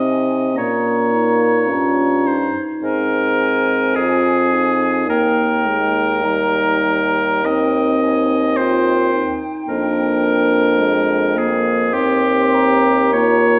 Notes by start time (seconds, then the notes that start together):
Already playing: C3 C4 D#4 D#5 G#5
0.54 A#2 A#3 C#4 C#5 A#5
1.13 D#4
1.67 G2 C#4 F4 A#5
2.26 D#4 C5
2.81 G#2 C4 A#4 G#5
3.40 G#5
3.94 F2 F4 G#4
4.51 D#4
5.07 D#2 A#3 A#4 G5
5.66 G#3
6.21 G3 D#4 A#5
7.43 C4 D#4 D#5 G5
8.02 G#5
8.56 F4 C5 G5
9.13 D#4
9.68 F2 A#3 D4 A#4
10.79 G#3
11.37 A#3 G#4
11.93 D#2 C4 D#4 G4 C6
12.54 A#5
13.13 A#3 F4 C#5 A#5